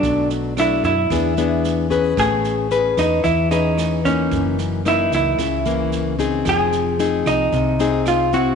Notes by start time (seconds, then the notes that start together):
Already playing: F#3 A3 D4
0.03 B1 B2, kick, snare
0.30 snare
0.57 F#3 A3 D4 E4, cross-stick, snare
0.83 F#2 E4, kick, snare
1.10 E2 E3 B3 D4 G#4, kick, cross-stick, snare
1.37 B3 D4 G#4, snare
1.64 snare
1.90 C#4 G#4 B4, kick, snare
2.17 A1 A3 G#4, kick, cross-stick, snare
2.44 snare
2.71 C#4 G#4 B4, snare
2.97 E2 D#4, kick, cross-stick, snare
3.24 E2 E3 E4, kick, snare
3.51 C#4 D#4 G#4 B4, snare
3.78 cross-stick, snare
4.05 E3 A#3 C#4 D#4, kick, snare
4.31 F#1 F#2, kick, snare
4.58 snare
4.85 E3 A#3 D#4 E4, cross-stick, snare
5.12 C#2 E4, kick, snare
5.39 C#2 C#3, kick, cross-stick, snare
5.65 E3 A#3, snare
5.92 snare
6.19 C4 D#4 G#4, kick, snare
6.45 F1 F3 G#4, kick, cross-stick, snare
6.72 snare
6.99 C4 D#4 G#4, snare
7.26 C2 D#4, kick, cross-stick, snare
7.52 C2 C3, kick, snare
7.79 C4 D#4 G#4, snare
8.06 F4, cross-stick, snare
8.32 C4 E4 F#4, kick, snare